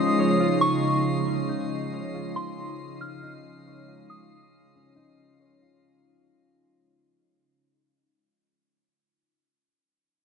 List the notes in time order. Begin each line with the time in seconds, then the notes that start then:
Already playing: C#3 F3 G#3 C#4 D#4 F4 C5 D#5 F5 D#6 C7
0.19 C#5
0.40 F4
0.61 C#6
1.27 C#4
1.49 D#4
1.92 C#5
2.14 F4
2.35 C5 C6
3.01 C#4 F6
3.23 D#4
3.66 C#5
3.88 F4
4.10 C#6 D#6
4.75 C#4
4.96 D#4
5.40 C#5
5.62 F4